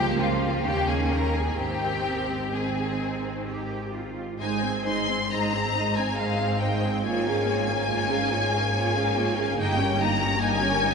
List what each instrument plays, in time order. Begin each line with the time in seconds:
Already playing: double bass section C#2, viola section F3 A#3, cello section A#3, violin section G4 G5
0.20 violin section F4 F5
0.64 double bass section D#2, viola section D#3 C#4, violin section G4 G5
0.88 violin section G#4 G#5
1.10 violin section A#4 A#5
1.34 violin section G#4 G#5
1.57 double bass section G#1, viola section D#3 C4, cello section C4, violin section G4 G5
2.53 viola section D#3 C4, cello section C4, violin section G#4 G#5
3.47 cello section G4
3.94 cello section F4
4.39 double bass section G#1, cello section G#2, viola section G#3 D#4, violin section C5 D#5 G#5
4.61 viola section C4, violin section G#4 C5
4.84 viola section G#3 D#4, violin section C5 D#5 C6
5.06 viola section C4, violin section G#4 C5
5.29 viola section G#3 D#4, violin section C5 D#5 A#5
5.50 viola section C4, violin section G#4 C5
5.73 violin section C5 D#5
5.77 viola section G#3 D#4
5.95 violin section G#4 C5 G#5
5.99 viola section C4
6.15 violin section C5 D#5 F5
6.21 viola section G#3 D#4
6.40 viola section C4, violin section G#4 C5
6.58 violin section C5 D#5 G5
6.64 viola section G#3 D#4
6.83 viola section C4, violin section G#4 C5
7.03 viola section A#3 F4, violin section G#4 C#5 G#5
7.27 viola section C#4 G#4, violin section A#4 F5
7.47 viola section A#3 F4, violin section G#4 C#5
7.68 viola section C#4 G#4, violin section A#4 F5
7.89 viola section A#3 F4, violin section G#4 C#5
8.08 viola section C#4 G#4, violin section A#4 F5
8.30 viola section A#3 F4, violin section G#4 C#5
8.52 viola section C#4 G#4, violin section A#4 F5
8.73 viola section A#3 F4, violin section G#4 C#5
8.95 viola section C#4 G#4, violin section A#4 F5
9.16 viola section A#3 F4, violin section G#4 C#5
9.36 viola section C#4 G#4, violin section A#4 F5
9.57 double bass section G1, cello section G2, viola section A#3 D#4, violin section G4 D#5 G5
9.79 viola section C#4 G4, violin section A#4 C#5
9.99 viola section A#3 D#4, violin section G4 D#5 A#5
10.20 viola section C#4 G4, violin section A#4 C#5
10.40 viola section A#3 D#4, violin section G4 D#5 G#5
10.62 viola section C#4 G4, violin section A#4 C#5
10.83 viola section A#3 D#4
10.87 violin section G4 D#5